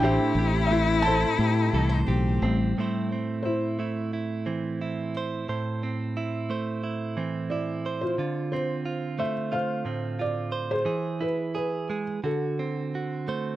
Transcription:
<<
  \new Staff \with { instrumentName = "Felt piano" } { \time 4/4 \key a \minor \tempo 4 = 88 << { g''4 e''8 a''4. r4 | r4 c''2~ c''8 r8 | r2. d''8. c''16~ | c''8 c''4 e''8 f''4 d''8. c''16~ |
c''8 b'8 b'4 a'4. r8 | } \\ { <g' c'' e''>4 e'8 <a' c''>4. r4 | r4 e'2~ e'8 r8 | r2. r8. f'16~ | f'4.~ f'16 r16 c''4.~ c''16 gis'16~ |
gis'4.~ gis'16 r16 fis'2 | } >> }
  \new Staff \with { instrumentName = "Clean electric guitar" } { \time 4/4 \key a \minor << { <a c' g' c''>8 g'8 c'8 c''8 g'8 a'16 c''16 g'8 c'8 | <a c' e' c''>8 c'8 e'8 e'8 e'8 c'8 e'8 c''8 | c''8 c'8 e'8 c''8 e'8 c'8 e'8 c''8 | f'8 c'8 f'8 c''8 f'8 c'8 f'8 c''8 |
gis'8 e'8 gis'8 gis'8 fis'8 c'8 fis'8 c''8 | } \\ { a,4 a4. e4. | a,4. a4 e4. | a,4. a4 e4. | d4. a4 a,4. |
e4. gis8 d4. a8 | } >> }
  \new Staff \with { instrumentName = "Cello" } { \time 4/4 \key a \minor e'2. c'4 | r1 | r1 | r1 |
r1 | }
  \new Staff \with { instrumentName = "Vibraphone" } { \time 4/4 \key a \minor d'8 r4 a2 g8~ | g8 r2. r8 | r1 | r1 |
r1 | }
  \new Staff \with { instrumentName = "Fingered electric bass" } { \clef bass \time 4/4 \key a \minor a,,16 r16 a,,4. a,8 c,8 b,,8 a,,8 | r1 | r1 | r1 |
r1 | }
>>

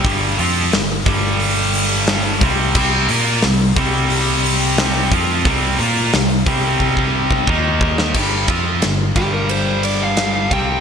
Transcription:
<<
  \new Staff \with { instrumentName = "Lead electric guitar" } { \time 4/4 \key g \minor \tempo 4 = 89 r1 | r1 | r1 | r4. g'16 bes'16 c''8 d''16 f''8. g''8 | }
  \new Staff \with { instrumentName = "Distorted electric guitar" } { \clef bass \time 4/4 \key g \minor <g, d g>8 <f c' f'>8 <g, d>8 <g, d g>2 <c g c'>8 | <c g c'>8 <bes f' bes'>8 <c g>8 <c g c'>2 <f c' f'>8 | <c g c'>8 <bes f' bes'>8 <c g>8 <c g c'>4. <ees bes ees'>4 | <g, d g>8 <f c' f'>8 <g, d>8 <g, d g>2 <c g c'>8 | }
  \new Staff \with { instrumentName = "Picked electric bass" } { \clef bass \time 4/4 \key g \minor g,,8 f,8 g,,8 g,,2 c,8 | c,8 bes,8 c,8 c,2 f,8 | c,8 bes,8 c,8 c,4. ees,4 | g,,8 f,8 g,,8 g,,2 c,8 | }
  \new DrumStaff \with { instrumentName = "Drums" } \drummode { \time 4/4 <hho bd>8 hho8 <hho sn>8 <hho bd>8 hho8 hho8 <hho sn>8 <hho bd>8 | <cymc bd>8 hho8 <hho sn>8 <hho bd>8 hho8 hho8 <hho sn>8 <hho bd>8 | <hho bd>8 hho8 <hho sn>8 <hho bd>8 bd16 bd8 bd16 bd8 bd16 sn16 | <cymc bd>8 <bd cymr>8 <cymr sn>8 <bd cymr>8 cymr8 cymr8 <cymr sn>8 <bd cymr>8 | }
>>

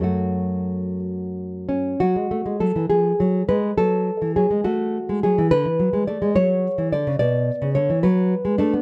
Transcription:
\new Staff \with { instrumentName = "Nylon-string guitar" } { \clef bass \time 6/8 \key fis \minor \tempo 4. = 69 << { fis'4. r4 cis'8 | fis'4 a'8 aes'4 ces''8 | a'4 gis'8 fis'4 gis'8 | b'4 d''8 cis''4 d''8 |
d''4 cis''8 b'4 d'8 | } \\ { <fis, fis a>2. | fis16 gis16 a16 gis16 fis16 e16 f8 fis8 aes8 | fis8. e16 fis16 gis16 a8. gis16 fis16 e16 | d16 e16 fis16 gis16 a16 gis16 fis8. e16 d16 cis16 |
b,8. cis16 d16 e16 fis8. gis16 a16 b16 | } >> }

